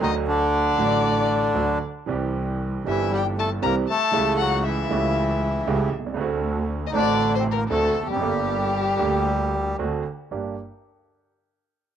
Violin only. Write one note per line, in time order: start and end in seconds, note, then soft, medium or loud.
0.03 0.14 D#5 medium
0.30 1.80 D5 loud
2.88 3.11 E5 medium
3.15 3.26 G5 medium
3.39 3.50 A5 medium
3.63 3.74 A#5 medium
3.88 4.36 A5 medium
4.38 4.62 F#5 medium
4.65 5.88 E5 medium
6.87 6.93 D#5 medium
6.93 7.33 D5 loud
7.35 7.43 C5 medium
7.51 7.60 A#4 medium
7.68 8.06 A4 medium
8.06 9.74 G4 medium